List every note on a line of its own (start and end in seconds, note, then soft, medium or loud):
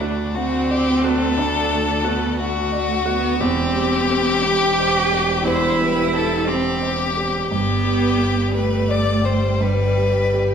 0.00 1.34 D2 medium
0.00 3.42 D2 medium
0.00 0.22 A3 soft
0.00 0.32 A3 medium
0.00 3.40 A3 medium
0.00 0.36 D4 medium
0.00 0.56 F#4 medium
0.00 3.40 D5 medium
0.00 3.40 F#5 medium
0.35 0.90 A3 soft
0.35 1.39 C4 loud
0.35 0.72 F#4 medium
0.70 1.05 G4 medium
0.70 1.24 D5 soft
1.04 1.58 F#4 medium
1.04 2.39 A4 medium
1.37 3.36 D2 medium
1.37 2.05 D4 medium
1.72 2.26 A3 medium
2.04 2.40 B3 medium
2.04 2.59 F#4 medium
2.38 3.08 A3 medium
2.38 2.93 A3 medium
2.38 3.42 F#4 medium
2.72 3.26 D5 medium
3.06 3.42 B3 loud
3.06 3.40 F#4 medium
3.40 7.52 E1 medium
3.40 5.43 E2 medium
3.40 7.50 G3 medium
3.40 4.45 C4 loud
3.40 7.52 C4 medium
3.40 5.48 G4 medium
3.40 7.50 G4 medium
3.75 4.32 G3 medium
4.10 4.66 G4 medium
4.44 5.00 G3 medium
4.44 5.45 G4 loud
4.80 5.33 C5 medium
5.12 5.66 G4 medium
5.45 7.46 E2 medium
5.45 6.49 E4 loud
5.45 5.83 C5 medium
5.80 6.35 G3 medium
5.80 6.15 B4 medium
6.13 6.68 G4 medium
6.13 6.50 A4 medium
6.47 7.02 G3 medium
6.47 7.16 C4 loud
6.47 7.50 G4 medium
6.82 7.37 C5 soft
7.17 7.51 G4 medium
7.50 10.54 G1 medium
7.50 9.57 G2 medium
7.50 10.54 G3 medium
7.50 8.55 B3 loud
7.50 8.52 G4 medium
7.50 10.54 G4 medium
7.50 10.54 D5 medium
7.84 8.40 G3 medium
8.18 8.75 G4 medium
8.53 9.10 G3 soft
8.53 9.60 A3 medium
8.53 8.92 B4 medium
8.88 9.46 D5 soft
8.88 9.27 D5 medium
9.24 9.82 G4 soft
9.24 9.63 C5 medium
9.61 10.54 G2 medium
9.61 10.54 G3 medium
9.61 10.54 B4 medium
9.98 10.54 G3 soft
10.34 10.54 G4 soft